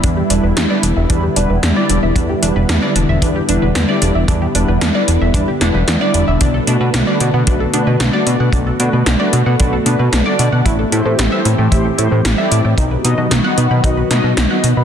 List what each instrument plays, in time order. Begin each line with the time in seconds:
Already playing: analog synth pad D3 G3 B3 E4
0.04 analog synth bass E2, synth arpeggio sound D4, kick, closed hi-hat
0.17 synth arpeggio sound G4
0.30 analog synth bass E1, analog polysynth G3 D4 E4 B4, synth arpeggio sound D4, closed hi-hat
0.43 analog synth bass E1, synth arpeggio sound B4
0.57 analog synth bass E2, synth arpeggio sound D4, snare, closed hi-hat
0.70 analog polysynth G3 D4 E4 B4, synth arpeggio sound D5
0.83 analog synth bass E1, synth arpeggio sound D4, closed hi-hat
0.96 analog synth bass E1, synth arpeggio sound E5
1.10 analog synth bass E2, analog polysynth G3 D4 E4 B4, synth arpeggio sound D4, kick, closed hi-hat
1.23 synth arpeggio sound G4
1.36 analog synth bass E1, analog polysynth G3 D4 E4 B4, synth arpeggio sound D4, closed hi-hat
1.50 analog synth bass E1, synth arpeggio sound B4
1.63 analog synth bass E2, synth arpeggio sound D4, snare, closed hi-hat
1.76 analog polysynth G3 D4 E4 D5, synth arpeggio sound D5
1.89 analog synth bass E1, synth arpeggio sound D4, closed hi-hat
2.03 analog synth bass E1, synth arpeggio sound E5
2.16 analog synth bass E2, synth arpeggio sound D4, kick, closed hi-hat
2.29 synth arpeggio sound G4
2.42 analog synth bass E1, analog polysynth G3 D4 E4 B4, synth arpeggio sound D4, closed hi-hat
2.56 analog synth bass E1, synth arpeggio sound B4
2.69 analog synth bass E2, synth arpeggio sound D4, snare, closed hi-hat
2.82 analog polysynth G3 D4 E4 B4, synth arpeggio sound D5
2.96 analog synth bass E1, synth arpeggio sound D4, closed hi-hat
3.09 analog synth bass E1, synth arpeggio sound E5
3.22 analog synth bass E2, analog polysynth G3 D4 E4 B4, synth arpeggio sound D4, kick, closed hi-hat
3.36 synth arpeggio sound G4
3.49 analog synth bass E1, analog polysynth G3 D4 E4 B4, synth arpeggio sound D4, closed hi-hat
3.62 analog synth bass E1, synth arpeggio sound B4
3.75 analog synth bass E2, synth arpeggio sound D4, snare, closed hi-hat
3.88 analog polysynth G3 D4 E4 D5, synth arpeggio sound D5
4.02 analog synth bass E1, synth arpeggio sound D4, closed hi-hat
4.15 analog synth bass E1, synth arpeggio sound E5
4.28 analog synth bass E2, synth arpeggio sound D4, kick, closed hi-hat
4.42 synth arpeggio sound G4
4.55 analog synth bass E1, analog polysynth G3 D4 E4 B4, synth arpeggio sound D4, closed hi-hat
4.68 analog synth bass E1, synth arpeggio sound B4
4.81 analog synth bass E2, synth arpeggio sound D4, snare, closed hi-hat
4.95 analog polysynth G3 D4 E4 B4, synth arpeggio sound D5
5.08 analog synth bass E1, synth arpeggio sound D4, closed hi-hat
5.21 analog synth bass E1, synth arpeggio sound E5
5.34 analog synth bass E2, analog polysynth G3 D4 E4 B4, synth arpeggio sound D4, kick, closed hi-hat
5.48 synth arpeggio sound G4
5.61 analog synth bass E1, analog polysynth G3 D4 E4 B4, synth arpeggio sound D4, snare, closed hi-hat
5.74 analog synth bass E1, synth arpeggio sound B4
5.88 analog synth bass E2, synth arpeggio sound D4, snare, closed hi-hat
6.01 analog polysynth G3 D4 E4 D5, synth arpeggio sound D5
6.14 analog synth bass E1, synth arpeggio sound D4, closed hi-hat
6.28 analog synth bass E1, synth arpeggio sound E5
6.41 analog synth bass B1, analog synth pad A3 F#4, synth arpeggio sound D4, kick, closed hi-hat
6.54 synth arpeggio sound A4
6.67 analog synth bass B2, analog polysynth A3 D4 F#4 B4, synth arpeggio sound D4, closed hi-hat
6.81 analog synth bass B2, synth arpeggio sound B4
6.94 analog synth bass B1, synth arpeggio sound D4, snare, closed hi-hat
7.07 analog polysynth A3 D4 F#4 B4, synth arpeggio sound D5
7.20 analog synth bass B2, synth arpeggio sound D4, closed hi-hat
7.34 analog synth bass B2, synth arpeggio sound F#5
7.47 analog synth bass B1, analog polysynth A3 D4 F#4 B4, synth arpeggio sound D4, kick, closed hi-hat
7.60 synth arpeggio sound A4
7.74 analog synth bass B2, analog polysynth A3 D4 F#4 B4, synth arpeggio sound D4, closed hi-hat
7.87 analog synth bass B2, synth arpeggio sound B4
8.00 analog synth bass B1, synth arpeggio sound D4, snare, closed hi-hat
8.13 analog polysynth A3 D4 F#4 D5, synth arpeggio sound D5
8.27 analog synth bass B2, synth arpeggio sound D4, closed hi-hat
8.40 analog synth bass B2, synth arpeggio sound F#5
8.53 analog synth bass B1, synth arpeggio sound D4, kick, closed hi-hat
8.67 synth arpeggio sound A4
8.80 analog synth bass B2, analog polysynth A3 D4 F#4 B4, synth arpeggio sound D4, closed hi-hat
8.93 analog synth bass B2, synth arpeggio sound B4
9.06 analog synth bass B1, synth arpeggio sound D4, snare, closed hi-hat
9.20 analog polysynth A3 D4 F#4 B4, synth arpeggio sound D5
9.33 analog synth bass B2, synth arpeggio sound D4, closed hi-hat
9.46 analog synth bass B2, synth arpeggio sound F#5
9.59 analog synth bass B1, analog polysynth A3 D4 F#4 B4, synth arpeggio sound D4, kick, closed hi-hat
9.73 synth arpeggio sound A4
9.86 analog synth bass B2, analog polysynth A3 D4 F#4 B4, synth arpeggio sound D4, closed hi-hat
9.99 analog synth bass B2, synth arpeggio sound B4
10.12 analog synth bass B1, synth arpeggio sound D4, snare, closed hi-hat
10.26 analog polysynth A3 D4 F#4 D5, synth arpeggio sound D5
10.39 analog synth bass B2, synth arpeggio sound D4, closed hi-hat
10.52 analog synth bass B2, synth arpeggio sound F#5
10.65 analog synth bass A1, analog synth pad E3 C4 G4, synth arpeggio sound E4, kick, closed hi-hat
10.79 synth arpeggio sound A4
10.92 analog synth bass A2, analog polysynth A3 E4 G4 C5, synth arpeggio sound E4, closed hi-hat
11.05 analog synth bass A2, synth arpeggio sound C5
11.19 analog synth bass A1, synth arpeggio sound E4, snare, closed hi-hat
11.32 analog polysynth A3 E4 G4 C5, synth arpeggio sound E5
11.45 analog synth bass A2, synth arpeggio sound E4, closed hi-hat
11.58 analog synth bass A2, synth arpeggio sound G5
11.72 analog synth bass A1, analog polysynth A3 E4 G4 C5, synth arpeggio sound E4, kick, closed hi-hat
11.85 synth arpeggio sound A4
11.98 analog synth bass A2, analog polysynth A3 E4 G4 C5, synth arpeggio sound E4, closed hi-hat
12.11 analog synth bass A2, synth arpeggio sound C5
12.25 analog synth bass A1, synth arpeggio sound E4, snare, closed hi-hat
12.38 analog polysynth A3 E4 G4 D5, synth arpeggio sound E5
12.51 analog synth bass A2, synth arpeggio sound E4, closed hi-hat
12.65 analog synth bass A2, synth arpeggio sound G5
12.78 analog synth bass B1, analog synth pad D#3 F#3 B3 F#4, synth arpeggio sound D#4, kick, closed hi-hat
12.91 synth arpeggio sound B4
13.04 analog synth bass B2, analog polysynth B3 D#4 F#4 D#5, synth arpeggio sound D#4, closed hi-hat
13.18 analog synth bass B2, synth arpeggio sound D#5
13.31 analog synth bass B1, synth arpeggio sound D#4, snare, closed hi-hat
13.44 analog polysynth B3 D#4 F#4 D#5, synth arpeggio sound F#5
13.58 analog synth bass B2, synth arpeggio sound D#4, closed hi-hat
13.71 analog synth bass B2, synth arpeggio sound B5
13.84 analog synth bass B1, analog polysynth B3 D#4 F#4 D#5, synth arpeggio sound D#4, kick, closed hi-hat
13.97 synth arpeggio sound B4
14.11 analog synth bass B2, analog polysynth B3 D#4 F#4 D#5, synth arpeggio sound D#4, snare, closed hi-hat
14.24 analog synth bass B2, synth arpeggio sound D#5
14.37 analog synth bass B1, synth arpeggio sound D#4, snare, closed hi-hat
14.50 analog polysynth B3 D#4 F#4 D#5, synth arpeggio sound F#5
14.64 analog synth bass B2, synth arpeggio sound D#4, closed hi-hat
14.77 analog synth bass B2, synth arpeggio sound B5